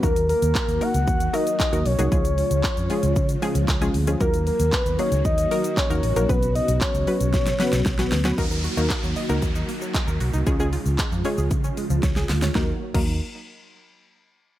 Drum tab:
CC |----------------|----------------|----------------|----------------|
HH |-xox-xox-xox-xox|-xox-xox-xox-xox|-xox-xox-xox-xox|-xox-xox-xox-xox|
SH |xxxxxxxxxxxxxxxx|xxxxxxxxxxxxxxxx|xxxxxxxxxxxxxxxx|xxxxxxxxxxxxxxxx|
CP |----x-------x---|----x-------x---|----x-------x---|----x-----------|
SD |----------------|----------------|----------------|--------oooooooo|
BD |o---o---o---o---|o---o---o---o---|o---o---o---o---|o---o---o---o---|

CC |----------------|----------------|---x------------|
HH |x-o-x-o-x-o-x-o-|x-o-x-o-x-o-x-o-|----------------|
SH |xxxxxxxxxxxxxxxx|xxxxxxxxxxxxxxxx|----------------|
CP |----x-------x---|----x-----------|----------------|
SD |----------------|------------oooo|o---------------|
BD |o---o---o---o---|o---o---o---o---|o--o------------|